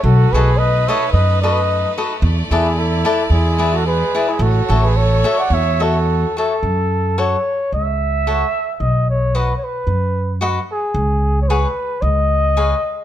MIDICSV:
0, 0, Header, 1, 6, 480
1, 0, Start_track
1, 0, Tempo, 544465
1, 34, Time_signature, 4, 2, 24, 8
1, 3875, Tempo, 556586
1, 6275, Tempo, 538117
1, 11507, End_track
2, 0, Start_track
2, 0, Title_t, "Cavaquinho"
2, 0, Program_c, 0, 24
2, 303, Note_on_c, 0, 66, 82
2, 308, Note_on_c, 0, 71, 77
2, 309, Note_on_c, 0, 69, 72
2, 312, Note_on_c, 0, 75, 98
2, 431, Note_off_c, 0, 66, 0
2, 434, Note_off_c, 0, 69, 0
2, 434, Note_off_c, 0, 71, 0
2, 436, Note_off_c, 0, 75, 0
2, 778, Note_on_c, 0, 66, 85
2, 780, Note_on_c, 0, 69, 90
2, 787, Note_on_c, 0, 71, 95
2, 791, Note_on_c, 0, 75, 98
2, 909, Note_off_c, 0, 66, 0
2, 910, Note_off_c, 0, 69, 0
2, 913, Note_off_c, 0, 71, 0
2, 915, Note_off_c, 0, 75, 0
2, 1264, Note_on_c, 0, 66, 75
2, 1265, Note_on_c, 0, 69, 75
2, 1269, Note_on_c, 0, 71, 71
2, 1270, Note_on_c, 0, 75, 78
2, 1390, Note_off_c, 0, 66, 0
2, 1390, Note_off_c, 0, 69, 0
2, 1392, Note_off_c, 0, 71, 0
2, 1393, Note_off_c, 0, 75, 0
2, 1742, Note_on_c, 0, 66, 74
2, 1743, Note_on_c, 0, 69, 80
2, 1748, Note_on_c, 0, 71, 83
2, 1749, Note_on_c, 0, 75, 83
2, 1867, Note_off_c, 0, 66, 0
2, 1868, Note_off_c, 0, 69, 0
2, 1871, Note_off_c, 0, 71, 0
2, 1871, Note_off_c, 0, 75, 0
2, 2215, Note_on_c, 0, 64, 85
2, 2221, Note_on_c, 0, 69, 78
2, 2221, Note_on_c, 0, 71, 89
2, 2226, Note_on_c, 0, 74, 85
2, 2343, Note_off_c, 0, 64, 0
2, 2346, Note_off_c, 0, 69, 0
2, 2346, Note_off_c, 0, 71, 0
2, 2349, Note_off_c, 0, 74, 0
2, 2686, Note_on_c, 0, 64, 90
2, 2688, Note_on_c, 0, 71, 94
2, 2689, Note_on_c, 0, 69, 99
2, 2696, Note_on_c, 0, 74, 101
2, 2818, Note_off_c, 0, 64, 0
2, 2820, Note_off_c, 0, 69, 0
2, 2820, Note_off_c, 0, 71, 0
2, 2824, Note_off_c, 0, 74, 0
2, 3160, Note_on_c, 0, 64, 77
2, 3167, Note_on_c, 0, 68, 70
2, 3168, Note_on_c, 0, 71, 83
2, 3169, Note_on_c, 0, 74, 77
2, 3298, Note_off_c, 0, 64, 0
2, 3301, Note_off_c, 0, 68, 0
2, 3302, Note_off_c, 0, 71, 0
2, 3302, Note_off_c, 0, 74, 0
2, 3655, Note_on_c, 0, 64, 81
2, 3655, Note_on_c, 0, 68, 74
2, 3662, Note_on_c, 0, 71, 71
2, 3665, Note_on_c, 0, 74, 88
2, 3787, Note_off_c, 0, 64, 0
2, 3787, Note_off_c, 0, 68, 0
2, 3790, Note_off_c, 0, 71, 0
2, 3792, Note_off_c, 0, 74, 0
2, 4125, Note_on_c, 0, 66, 70
2, 4134, Note_on_c, 0, 69, 85
2, 4136, Note_on_c, 0, 76, 66
2, 4137, Note_on_c, 0, 73, 73
2, 4258, Note_off_c, 0, 66, 0
2, 4263, Note_off_c, 0, 69, 0
2, 4264, Note_off_c, 0, 73, 0
2, 4264, Note_off_c, 0, 76, 0
2, 4604, Note_on_c, 0, 66, 92
2, 4604, Note_on_c, 0, 69, 85
2, 4611, Note_on_c, 0, 73, 96
2, 4615, Note_on_c, 0, 76, 90
2, 4737, Note_off_c, 0, 66, 0
2, 4737, Note_off_c, 0, 69, 0
2, 4741, Note_off_c, 0, 73, 0
2, 4743, Note_off_c, 0, 76, 0
2, 5084, Note_on_c, 0, 66, 65
2, 5088, Note_on_c, 0, 73, 67
2, 5089, Note_on_c, 0, 69, 76
2, 5090, Note_on_c, 0, 76, 78
2, 5221, Note_off_c, 0, 66, 0
2, 5223, Note_off_c, 0, 69, 0
2, 5223, Note_off_c, 0, 73, 0
2, 5223, Note_off_c, 0, 76, 0
2, 5576, Note_on_c, 0, 66, 67
2, 5586, Note_on_c, 0, 69, 74
2, 5588, Note_on_c, 0, 73, 73
2, 5589, Note_on_c, 0, 76, 82
2, 5709, Note_off_c, 0, 66, 0
2, 5714, Note_off_c, 0, 69, 0
2, 5716, Note_off_c, 0, 73, 0
2, 5716, Note_off_c, 0, 76, 0
2, 6275, Note_on_c, 0, 66, 76
2, 6276, Note_on_c, 0, 69, 68
2, 6277, Note_on_c, 0, 73, 68
2, 6282, Note_on_c, 0, 78, 69
2, 6430, Note_off_c, 0, 66, 0
2, 6430, Note_off_c, 0, 69, 0
2, 6431, Note_off_c, 0, 73, 0
2, 6433, Note_off_c, 0, 78, 0
2, 7248, Note_on_c, 0, 66, 65
2, 7249, Note_on_c, 0, 69, 77
2, 7250, Note_on_c, 0, 73, 78
2, 7257, Note_on_c, 0, 78, 86
2, 7398, Note_off_c, 0, 66, 0
2, 7399, Note_off_c, 0, 69, 0
2, 7399, Note_off_c, 0, 73, 0
2, 7403, Note_off_c, 0, 78, 0
2, 8208, Note_on_c, 0, 66, 66
2, 8210, Note_on_c, 0, 71, 77
2, 8210, Note_on_c, 0, 75, 74
2, 8220, Note_on_c, 0, 78, 82
2, 8360, Note_off_c, 0, 66, 0
2, 8361, Note_off_c, 0, 71, 0
2, 8361, Note_off_c, 0, 75, 0
2, 8366, Note_off_c, 0, 78, 0
2, 9157, Note_on_c, 0, 66, 93
2, 9165, Note_on_c, 0, 75, 95
2, 9166, Note_on_c, 0, 71, 90
2, 9169, Note_on_c, 0, 78, 92
2, 9311, Note_off_c, 0, 66, 0
2, 9315, Note_off_c, 0, 75, 0
2, 9316, Note_off_c, 0, 71, 0
2, 9317, Note_off_c, 0, 78, 0
2, 10129, Note_on_c, 0, 68, 88
2, 10130, Note_on_c, 0, 73, 70
2, 10133, Note_on_c, 0, 71, 90
2, 10135, Note_on_c, 0, 78, 83
2, 10277, Note_off_c, 0, 68, 0
2, 10277, Note_off_c, 0, 73, 0
2, 10278, Note_off_c, 0, 71, 0
2, 10279, Note_off_c, 0, 78, 0
2, 11081, Note_on_c, 0, 68, 77
2, 11083, Note_on_c, 0, 71, 84
2, 11087, Note_on_c, 0, 73, 66
2, 11089, Note_on_c, 0, 77, 91
2, 11232, Note_off_c, 0, 68, 0
2, 11233, Note_off_c, 0, 71, 0
2, 11235, Note_off_c, 0, 73, 0
2, 11236, Note_off_c, 0, 77, 0
2, 11507, End_track
3, 0, Start_track
3, 0, Title_t, "Muted trumpet"
3, 0, Program_c, 1, 59
3, 33, Note_on_c, 1, 69, 83
3, 285, Note_on_c, 1, 71, 93
3, 298, Note_off_c, 1, 69, 0
3, 508, Note_on_c, 1, 75, 88
3, 521, Note_off_c, 1, 71, 0
3, 770, Note_on_c, 1, 76, 81
3, 783, Note_off_c, 1, 75, 0
3, 985, Note_off_c, 1, 76, 0
3, 991, Note_on_c, 1, 75, 92
3, 1230, Note_off_c, 1, 75, 0
3, 1252, Note_on_c, 1, 75, 94
3, 1694, Note_off_c, 1, 75, 0
3, 2213, Note_on_c, 1, 68, 78
3, 2456, Note_on_c, 1, 69, 74
3, 2470, Note_off_c, 1, 68, 0
3, 2923, Note_on_c, 1, 68, 85
3, 2937, Note_off_c, 1, 69, 0
3, 3317, Note_on_c, 1, 69, 80
3, 3331, Note_off_c, 1, 68, 0
3, 3410, Note_off_c, 1, 69, 0
3, 3414, Note_on_c, 1, 71, 93
3, 3782, Note_on_c, 1, 68, 77
3, 3795, Note_off_c, 1, 71, 0
3, 3891, Note_on_c, 1, 69, 88
3, 3904, Note_off_c, 1, 68, 0
3, 4261, Note_on_c, 1, 71, 80
3, 4273, Note_off_c, 1, 69, 0
3, 4366, Note_on_c, 1, 73, 89
3, 4379, Note_off_c, 1, 71, 0
3, 4735, Note_on_c, 1, 78, 92
3, 4748, Note_off_c, 1, 73, 0
3, 4860, Note_on_c, 1, 76, 95
3, 4873, Note_off_c, 1, 78, 0
3, 5115, Note_on_c, 1, 69, 86
3, 5128, Note_off_c, 1, 76, 0
3, 5588, Note_off_c, 1, 69, 0
3, 5592, Note_on_c, 1, 69, 84
3, 6286, Note_on_c, 1, 73, 81
3, 6299, Note_off_c, 1, 69, 0
3, 6764, Note_off_c, 1, 73, 0
3, 6779, Note_on_c, 1, 76, 98
3, 7676, Note_off_c, 1, 76, 0
3, 7676, Note_on_c, 1, 76, 59
3, 7724, Note_on_c, 1, 75, 81
3, 7738, Note_off_c, 1, 76, 0
3, 7978, Note_off_c, 1, 75, 0
3, 7988, Note_on_c, 1, 73, 81
3, 8215, Note_on_c, 1, 71, 70
3, 8228, Note_off_c, 1, 73, 0
3, 8402, Note_off_c, 1, 71, 0
3, 8413, Note_on_c, 1, 73, 62
3, 8472, Note_on_c, 1, 71, 74
3, 8485, Note_off_c, 1, 73, 0
3, 9175, Note_off_c, 1, 71, 0
3, 9425, Note_on_c, 1, 68, 82
3, 10030, Note_off_c, 1, 68, 0
3, 10060, Note_on_c, 1, 73, 70
3, 10118, Note_on_c, 1, 71, 81
3, 10131, Note_off_c, 1, 73, 0
3, 10592, Note_on_c, 1, 75, 99
3, 10605, Note_off_c, 1, 71, 0
3, 11507, Note_off_c, 1, 75, 0
3, 11507, End_track
4, 0, Start_track
4, 0, Title_t, "Trumpet"
4, 0, Program_c, 2, 56
4, 34, Note_on_c, 2, 66, 79
4, 293, Note_on_c, 2, 68, 89
4, 306, Note_off_c, 2, 66, 0
4, 523, Note_on_c, 2, 71, 82
4, 536, Note_off_c, 2, 68, 0
4, 778, Note_on_c, 2, 73, 91
4, 792, Note_off_c, 2, 71, 0
4, 988, Note_off_c, 2, 73, 0
4, 994, Note_on_c, 2, 71, 76
4, 1231, Note_off_c, 2, 71, 0
4, 1252, Note_on_c, 2, 71, 74
4, 1694, Note_off_c, 2, 71, 0
4, 2216, Note_on_c, 2, 64, 75
4, 2432, Note_off_c, 2, 64, 0
4, 2432, Note_on_c, 2, 64, 90
4, 2920, Note_off_c, 2, 64, 0
4, 2920, Note_on_c, 2, 64, 72
4, 3290, Note_on_c, 2, 66, 77
4, 3303, Note_off_c, 2, 64, 0
4, 3393, Note_off_c, 2, 66, 0
4, 3398, Note_on_c, 2, 68, 76
4, 3781, Note_on_c, 2, 64, 69
4, 3794, Note_off_c, 2, 68, 0
4, 3901, Note_on_c, 2, 66, 76
4, 3914, Note_off_c, 2, 64, 0
4, 4259, Note_on_c, 2, 68, 71
4, 4272, Note_off_c, 2, 66, 0
4, 4368, Note_on_c, 2, 69, 82
4, 4381, Note_off_c, 2, 68, 0
4, 4726, Note_on_c, 2, 74, 73
4, 4739, Note_off_c, 2, 69, 0
4, 4844, Note_on_c, 2, 73, 83
4, 4857, Note_off_c, 2, 74, 0
4, 5109, Note_on_c, 2, 66, 68
4, 5122, Note_off_c, 2, 73, 0
4, 5585, Note_off_c, 2, 66, 0
4, 11507, End_track
5, 0, Start_track
5, 0, Title_t, "Violin section"
5, 0, Program_c, 3, 48
5, 0, Note_on_c, 3, 57, 88
5, 23, Note_on_c, 3, 71, 91
5, 30, Note_on_c, 3, 63, 73
5, 1924, Note_off_c, 3, 71, 0
5, 1927, Note_off_c, 3, 63, 0
5, 1950, Note_on_c, 3, 74, 85
5, 1960, Note_on_c, 3, 64, 69
5, 2876, Note_off_c, 3, 57, 0
5, 2910, Note_on_c, 3, 56, 79
5, 3855, Note_off_c, 3, 74, 0
5, 3860, Note_off_c, 3, 64, 0
5, 3862, Note_on_c, 3, 66, 78
5, 3862, Note_on_c, 3, 73, 84
5, 3866, Note_off_c, 3, 56, 0
5, 3872, Note_on_c, 3, 57, 85
5, 5773, Note_off_c, 3, 66, 0
5, 5773, Note_off_c, 3, 73, 0
5, 5778, Note_off_c, 3, 57, 0
5, 11507, End_track
6, 0, Start_track
6, 0, Title_t, "Upright bass"
6, 0, Program_c, 4, 32
6, 31, Note_on_c, 4, 35, 104
6, 199, Note_off_c, 4, 35, 0
6, 288, Note_on_c, 4, 35, 86
6, 746, Note_off_c, 4, 35, 0
6, 998, Note_on_c, 4, 42, 84
6, 1617, Note_off_c, 4, 42, 0
6, 1959, Note_on_c, 4, 40, 106
6, 2122, Note_off_c, 4, 40, 0
6, 2211, Note_on_c, 4, 40, 93
6, 2665, Note_off_c, 4, 40, 0
6, 2908, Note_on_c, 4, 40, 88
6, 3536, Note_off_c, 4, 40, 0
6, 3873, Note_on_c, 4, 33, 109
6, 4038, Note_off_c, 4, 33, 0
6, 4133, Note_on_c, 4, 33, 101
6, 4586, Note_off_c, 4, 33, 0
6, 4830, Note_on_c, 4, 40, 91
6, 5460, Note_off_c, 4, 40, 0
6, 5800, Note_on_c, 4, 42, 81
6, 6417, Note_off_c, 4, 42, 0
6, 6762, Note_on_c, 4, 37, 74
6, 7385, Note_off_c, 4, 37, 0
6, 7723, Note_on_c, 4, 35, 78
6, 8348, Note_off_c, 4, 35, 0
6, 8674, Note_on_c, 4, 42, 79
6, 9297, Note_off_c, 4, 42, 0
6, 9634, Note_on_c, 4, 37, 96
6, 10258, Note_off_c, 4, 37, 0
6, 10595, Note_on_c, 4, 37, 86
6, 11219, Note_off_c, 4, 37, 0
6, 11507, End_track
0, 0, End_of_file